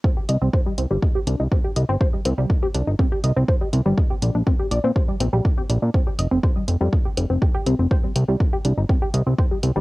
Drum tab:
HH |-x-x-x-x|-x-x-x-x|-x-x-x-x|-x-x-x-x|
BD |o-o-o-o-|o-o-o-o-|o-o-o-o-|o-o-o-o-|

HH |-x-x-x-x|
BD |o-o-o-o-|